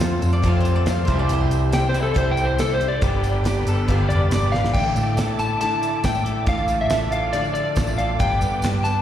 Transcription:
Already playing: F2 C3 F3 A3 C4 F4 A4 C5 A5
0.00 F3 C4 F4 A4, snare, closed hi-hat, tambourine
0.21 F2 C4 F4 A4, closed hi-hat, tambourine
0.33 D5
0.42 F2 C3 F3 A3 C4 F4 A4, kick, closed hi-hat
0.47 F5
0.61 C5
0.65 closed hi-hat, tambourine
0.76 D5
0.86 F3 C4 F4 A4 F5, snare, closed hi-hat, tambourine
1.05 C2 E3 C4 E4 G4 C5 E5 C6, kick, closed hi-hat
1.09 C3 G3, tambourine
1.19 D5
1.29 C2 C5, closed hi-hat, tambourine
1.51 closed hi-hat, tambourine
1.72 G3 C4 E4 G4 G5, snare, closed hi-hat, tambourine
1.89 G4 C5
1.94 C3 E3 G3 C4 E4, closed hi-hat, tambourine
2.03 A4
2.14 C2 C3 G3 C4 E4 G4 C5, kick, closed hi-hat
2.31 G5
2.37 closed hi-hat, tambourine
2.45 C5
2.58 G3 C4 E4 G4 A4, snare, closed hi-hat, tambourine
2.74 C5
2.80 C4 E4 G4, closed hi-hat, tambourine
2.88 D5
3.00 G1 G2 D3 G3 B3 D4 G4 B4 D5 B5, kick, closed hi-hat, tambourine
3.23 closed hi-hat, tambourine
3.44 G3 B3 D4 G4, snare, closed hi-hat, tambourine
3.66 G1 G3 B3 D4 G4 A4, closed hi-hat, tambourine
3.88 G1 G2 D3 G3 B3 D4 G4 F5, kick, closed hi-hat, tambourine
4.09 F1 D5, closed hi-hat
4.31 G1 G3 B3 D4 G4 D5, snare, closed hi-hat, tambourine
4.52 A1 G3 B3 D4 G4 F5, snare, tambourine
4.64 snare
4.74 A1 A2 D3 A3 D4 E4 A4 D5 E5 G5 D6, kick, crash
4.96 A2 A3, closed hi-hat, tambourine
5.17 A3 D4 E4 A4, snare, closed hi-hat, tambourine
5.39 E4 A5, closed hi-hat, tambourine
5.61 A2 D3 A3 D4 E4 A4 A5, closed hi-hat, tambourine
5.72 tambourine
5.82 E4, closed hi-hat, tambourine
6.04 A2 A3 D4 E4 A4 G5, kick, snare, closed hi-hat, tambourine
6.15 tambourine
6.25 A4, closed hi-hat
6.46 A1 A2 D3 A3 D4 F4 A4 F5 D6, kick, closed hi-hat
6.58 tambourine
6.68 A3, closed hi-hat, tambourine
6.81 E5
6.90 A3 D4 F4, snare, closed hi-hat, tambourine
6.94 A4
7.12 D4 F5, closed hi-hat
7.33 A2 D3 F3 A3 D4 F4 A4 D5, closed hi-hat, tambourine
7.44 tambourine
7.54 D4 D5, closed hi-hat
7.75 A1 A3 D4 F4 A4, kick, snare, closed hi-hat, tambourine
7.87 tambourine
7.98 A4 F5, closed hi-hat
8.19 G1 G2 D3 G3 B3 D4 B4 G5, kick, closed hi-hat
8.31 tambourine
8.41 G2 B3, closed hi-hat, tambourine
8.62 G3 B3 D4 G4 B4, snare, closed hi-hat, tambourine
8.83 G3 B3 D4 B4 A5, closed hi-hat, tambourine

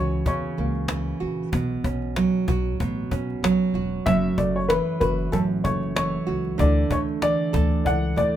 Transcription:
Already playing: C#2 C#3 E3 A#3 F#4 C#5
0.11 cajon slap
0.26 E2 C#3 C#5, cajon bass
0.58 C#2 A#3, cajon slap
0.75 cajon slap
0.88 E3, cajon slap
1.20 A#1 F#4, cajon slap
1.52 B1 B2, cajon bass
1.84 B1 C#4, cajon bass
2.02 cajon slap
2.16 F#3, cajon slap
2.48 B1 F#4, cajon bass
2.66 cajon slap
2.80 A1 B2, cajon bass
3.11 B1 C#4, cajon bass
3.30 cajon slap
3.43 B1 F#3, cajon slap
3.74 E1 F#4, cajon slap
4.06 F#1 F#2 E5, cajon bass
4.38 F#1 A3 D5, cajon bass
4.56 C#5, cajon slap
4.69 E3 B4, cajon slap
5.00 F#1 F#4 B4, cajon bass
5.19 cajon slap
5.32 A1 F#2 A4, cajon bass
5.64 F#1 A3 C#5, cajon bass
5.83 cajon slap
5.96 E3 C#5, cajon slap
6.27 C#2 F#4, cajon slap
6.45 cajon slap
6.58 D2 D3 A3 D4 E4 D5, cajon bass
6.90 D2 A3 C#5, cajon bass
7.09 cajon slap
7.22 E3 D5, cajon slap
7.53 D2 A4, cajon bass
7.71 cajon slap
7.83 C#2 A3 E4 D5 F#5, cajon bass
8.16 D2 A3 E4 D5, cajon bass

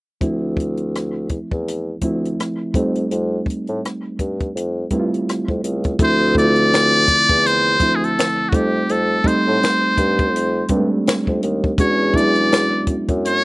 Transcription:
0.21 D2 F3 A3 C4 E4, kick, closed hi-hat
0.57 kick, closed hi-hat
0.77 closed hi-hat
0.95 cross-stick, closed hi-hat
1.29 E2, kick, closed hi-hat
1.51 E2, kick
1.68 closed hi-hat
2.01 D2 F3 A3 C4 E4, kick, closed hi-hat
2.25 closed hi-hat
2.40 cross-stick, closed hi-hat
2.74 F2 G3 A3 C4 D#4, kick, closed hi-hat
2.95 closed hi-hat
3.11 F2, closed hi-hat
3.46 kick, closed hi-hat
3.67 A2, closed hi-hat
3.85 cross-stick, closed hi-hat
4.19 G2, kick, closed hi-hat
4.40 kick, closed hi-hat
4.55 F2, closed hi-hat
4.90 G2 G3 A3 C4 E4, kick, closed hi-hat
5.00 F4
5.14 closed hi-hat
5.29 cross-stick, closed hi-hat
5.48 F2, kick
5.64 C#2, closed hi-hat
5.84 kick, closed hi-hat
5.99 D2 F3 A3 C4 E4, kick, closed hi-hat
6.03 C5
6.35 D3 A3 C4 E4 D5, kick, closed hi-hat
6.44 F4
6.56 closed hi-hat
6.74 finger snap, snare, closed hi-hat
7.08 E2, kick, closed hi-hat
7.29 E2, kick, closed hi-hat
7.46 C5, closed hi-hat
7.80 D2 F3 A3 C4 E4, kick, closed hi-hat
7.96 G#4
8.04 A4, closed hi-hat
8.19 finger snap, snare, closed hi-hat
8.49 G3 A3 F#4, kick
8.53 F2 C4 D#4 G4, closed hi-hat
8.89 F2 A4, closed hi-hat
9.24 G3 A3 C4 D#4 C5, kick, closed hi-hat
9.47 A2
9.63 finger snap, snare, closed hi-hat
9.97 G2, kick, closed hi-hat
10.19 kick, closed hi-hat
10.34 F2, closed hi-hat
10.68 G2 G3 G#3 C4 D4, kick, closed hi-hat
10.76 A3
11.07 finger snap, snare, closed hi-hat
11.27 F2, kick
11.43 D#2, closed hi-hat
11.64 kick
11.78 E2 G#3 C#4 D4 F#4 C#5, kick, closed hi-hat
12.14 F#3 B3 D4 E4 D5, kick, closed hi-hat
12.20 G#3
12.35 closed hi-hat
12.52 finger snap, snare, closed hi-hat
12.87 F#2, kick, closed hi-hat
13.08 F#2, kick, closed hi-hat
13.25 C#5, closed hi-hat

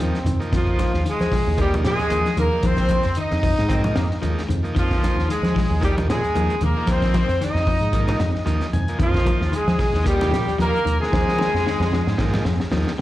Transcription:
Already playing: F3 D#4
0.00 D#2 F3 A#3 C4, high conga
0.15 snare, closed hi-hat
0.24 F2 D#3, closed hi-hat, low conga
0.40 F3 A#3 D#4, closed hi-hat
0.52 F2 D#3 F3 F4, kick, snare, closed hi-hat
0.67 kick
0.79 F3, kick, snare, closed hi-hat, high conga
0.94 D#2, snare
1.05 D#3, closed hi-hat, high conga
1.10 G#3 G#4
1.20 F3, snare, closed hi-hat, high conga
1.32 F3, kick, snare, open hi-hat, low conga
1.47 D#2
1.58 D#3 F3 G3 A#3 D#4 G4, kick, closed hi-hat, high conga
1.62 G3
1.74 closed hi-hat, high conga, low conga
1.85 A#2 F3 G#3 G#4, snare, closed hi-hat
1.99 snare, closed hi-hat
2.08 D#2 F3 A#3 D#4, closed hi-hat, high conga
2.25 snare, closed hi-hat, high conga
2.37 D#2 D#3 A#3 A#4, closed hi-hat, high conga, low conga
2.52 F3 A#3 D#4
2.63 D#3 F3 C4 C5, kick, closed hi-hat, high conga
2.77 kick, snare, closed hi-hat
2.89 F3, kick, closed hi-hat, high conga
3.03 F2, snare, closed hi-hat
3.15 D#3 D#4, closed hi-hat, high conga
3.19 D#4 D#5
3.31 F2, snare, high conga
3.43 F3, kick, open hi-hat, low conga
3.59 G#2, snare, closed hi-hat
3.69 D#3 F3 A#3 C4 D#4, kick, closed hi-hat, high conga
3.84 closed hi-hat, high conga, low conga
3.96 F2 F3 A#3, snare, closed hi-hat
4.11 snare
4.21 D#2 F3 G#3 A#3 D#4, closed hi-hat, high conga
4.38 snare, closed hi-hat
4.49 F2 D#3, closed hi-hat, low conga
4.63 F3 A#3 D#4, closed hi-hat
4.75 F2 D#3 F3 F4, kick, snare, closed hi-hat
4.79 F3
4.91 kick, snare
5.01 F3, muted fingered electric bass stroke, kick, snare, closed hi-hat, high conga
5.16 D#2, snare
5.29 D#3 G#3 G#4, closed hi-hat, high conga
5.43 F3, snare, closed hi-hat, high conga
5.55 F3, kick, snare, open hi-hat, low conga
5.70 D#2
5.80 D#3 F3 G3 A#3 D#4 G4, kick, closed hi-hat, high conga
5.98 closed hi-hat, high conga, low conga
6.08 A#2 F3 G#3 G#4, snare, closed hi-hat
6.24 closed hi-hat
6.35 D#2 F3 A#3 D#4, closed hi-hat, high conga
6.50 closed hi-hat, high conga
6.61 D#2 D#3 A#3 A#4, closed hi-hat, high conga, low conga
6.77 F3 A#3 D#4
6.87 F3 C4, muted clean electric guitar stroke, kick, snare, closed hi-hat, high conga
6.91 C4 C5
7.02 kick, snare, closed hi-hat
7.14 F3, kick, snare, closed hi-hat, high conga
7.28 F2, snare, closed hi-hat
7.41 D#3 D#4 D#5, snare, closed hi-hat, high conga
7.54 F2, snare, high conga
7.67 F3, kick, open hi-hat, low conga
7.80 G#2, closed hi-hat
7.93 D#3 F3 A#3 D#4, kick, closed hi-hat
8.08 snare, closed hi-hat, high conga, low conga
8.19 F2 F3, snare, closed hi-hat
8.35 snare
8.45 D#2 F3 A#3 D#4 D#5, closed hi-hat, high conga
8.61 snare, closed hi-hat, high conga
8.73 F2 D#3 G#5, closed hi-hat, low conga
8.88 F3 A#3 D#4, closed hi-hat
8.99 F2 D#3 F3 F4, kick, closed hi-hat, high conga
9.14 kick, snare
9.25 F3, kick, closed hi-hat, high conga
9.41 D#2, snare
9.52 D#3 G#3 G#4, closed hi-hat, high conga
9.68 F3, snare, closed hi-hat, high conga
9.79 F3, kick, snare, open hi-hat, low conga
9.93 D#2, snare
10.04 D#3 F3 G3 A#3 D#4 G4, kick, closed hi-hat
10.21 snare, closed hi-hat, high conga, low conga
10.31 A#2 F3, snare, closed hi-hat
10.48 snare, closed hi-hat
10.58 D#2 F3 A#3 D#4 A#4, closed hi-hat, high conga
10.74 closed hi-hat, high conga
10.85 D#2 D#3, closed hi-hat, low conga
10.99 F3 G#3 A#3 D#4 G#4, snare
11.11 D#3 F3, kick, snare, high conga
11.28 snare
11.38 D#3, snare, high conga
11.54 F2, snare
11.66 D#3, snare, high conga
11.80 F2, snare, high conga
11.92 F3, snare, low conga
12.07 G#2, snare
12.17 D#3 F3 A#3 D#4, kick, snare
12.33 snare, high conga, low conga
12.45 F2 F3, snare
12.60 snare
12.71 D#2 F3 A#3 D#4, snare, high conga
12.85 snare, high conga

